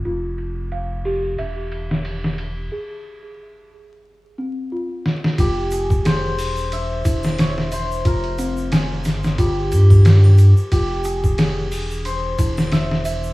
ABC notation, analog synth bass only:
X:1
M:4/4
L:1/8
Q:"Swing 16ths" 1/4=90
K:Fm
V:1 name="Analog synth bass" clef=bass
F,,,4 =E,,,4 | z8 | F,,,3 =E,,,2 _F,,,3 | F,,,3 G,,,2 G,,2 z |
F,,,3 =E,,,2 E,,,3 |]